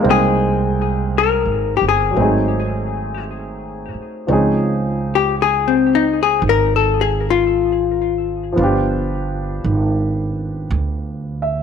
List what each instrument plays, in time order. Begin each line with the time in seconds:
0.00 grand piano G#3 A#3 C4
0.04 upright bass C2, grand piano D#4
0.09 hollow-body jazz guitar G#4, grand piano G5
1.18 hollow-body jazz guitar A#4
1.45 upright bass G#1
1.77 hollow-body jazz guitar G4
1.81 upright bass G1
1.88 hollow-body jazz guitar G#4
2.11 grand piano F#3 A3
2.16 upright bass G#1, grand piano C4 D#4
2.22 grand piano G#4
3.94 muted upright bass stroke
4.27 upright bass C#2, grand piano F3 C4 C#4 D#4
4.32 grand piano G#4
5.15 hollow-body jazz guitar G4
5.42 hollow-body jazz guitar G#4
5.68 hollow-body jazz guitar C4
5.95 hollow-body jazz guitar D#4
6.23 hollow-body jazz guitar G#4
6.42 upright bass G#1
6.49 hollow-body jazz guitar A#4
6.76 hollow-body jazz guitar A4
7.01 hollow-body jazz guitar G#4
7.30 hollow-body jazz guitar F4
8.52 grand piano F3 B3
8.57 upright bass G1, grand piano D4 F4
8.63 grand piano G4
9.64 upright bass G#1
10.71 upright bass D2
11.42 grand piano E5